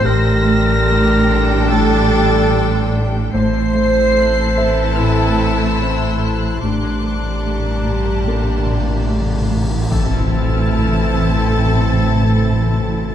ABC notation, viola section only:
X:1
M:4/4
L:1/16
Q:1/4=73
K:Aphr
V:1 name="Viola section"
[G,D]16 | [A,E]16 | [G,G]12- [G,G]3 z | [CE]16 |]